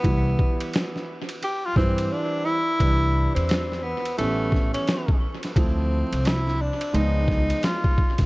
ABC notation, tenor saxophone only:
X:1
M:4/4
L:1/16
Q:"Swing 16ths" 1/4=87
K:C
V:1 name="Tenor saxophone"
B,4 z4 G F C2 D2 E2- | E3 C3 B,2 A,3 ^C3 z2 | C4 E2 D2 _E4 F3 z |]